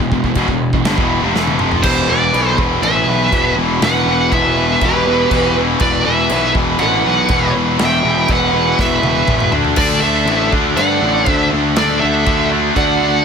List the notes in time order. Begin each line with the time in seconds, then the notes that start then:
0.00 E1 E2 B2
0.12 E1 E2 B2, kick
0.24 E1 E2 B2, kick
0.35 E1 E2 B2, kick, china
0.48 E1 E2 B2, kick
0.73 E1 E2 B2, kick
0.85 G1 G2 D3, snare, china
0.98 E1 E2 B2 E3, kick
1.22 F1 F2 C3
1.35 E1 E2 B2 E3, snare
1.47 high tom
1.59 F1 F2 C3 F3, mid tom
1.72 floor tom
1.82 E1 E2 B2 E3 G4 C5, kick, crash, china
2.08 E1 E2 B2 E3 B4 D5
2.33 B1 E2 B2 E3, china
2.57 E1 E2 B2 E3, kick
2.82 A1 E2 B2 E3 B4 E5, china
3.07 B1 E2 B2 E3
3.31 E1 E2 B2 E3, kick, china
3.56 E1 E2 B2 E3
3.81 E1 E2 B2 E3 B4 F#5, snare, china
4.06 E1 E2 B2 E3
4.32 E1 E2 B2 E3 E5, kick, china
4.36 B4
4.57 E2 B2 E3
4.81 E1 E2 B2 E3 G4, kick, china
4.85 B4
5.06 E2 B2 E3
5.30 E1 E2 B2 E3, kick, china
5.56 E2 B2 E3
5.80 E1 E2 B2 E3 B4 D5, kick, china
6.05 E1 E2 B2 E3 B4 E5
6.29 B1 E2 B2 E3, china
6.55 E1 E2 B2 E3, kick
6.79 A1 E2 B2 E3 B4 F#5, china
7.04 B1 E2 B2 E3
7.29 E1 E2 B2 E3, kick, china
7.55 E1 E2 B2 E3
7.79 E1 E2 B2 E3, snare, china
7.84 E5 G5
8.04 E1 E2 B2 E3
8.28 E1 E2 B2 E3 B4 F#5, kick, china
8.52 E2 B2 E3
8.76 E1 E2 B2 E3 B4, kick, snare
8.81 E5
9.02 E2 B2 E3, high tom
9.27 E1 E2 B2 E3, kick, mid tom
9.40 mid tom
9.51 D2 D3 A3 D4, floor tom
9.65 floor tom
9.76 D2 D3 A3 D4 A4 D5, kick, china, crash
10.01 D2 D3 A3 D4 A4 E5
10.26 A1 D3 A3 D4, china
10.51 D2 D3 A3 D4, kick
10.76 G2 D3 A3 D4 D5 F#5, china
11.01 A1 D3 A3 D4
11.25 D2 D3 A3 D4 C5 E5, kick, china
11.50 D2 D3 A3 D4
11.76 D2 D3 A3 D4 A4 D5, snare, china
12.00 D2 D3 A3 D4 A4 E5
12.25 D2 D3 A3 D4, kick, china
12.51 D3 A3 D4
12.75 D2 D3 A3 D4 D5 F#5, kick, china
13.01 D3 A3 D4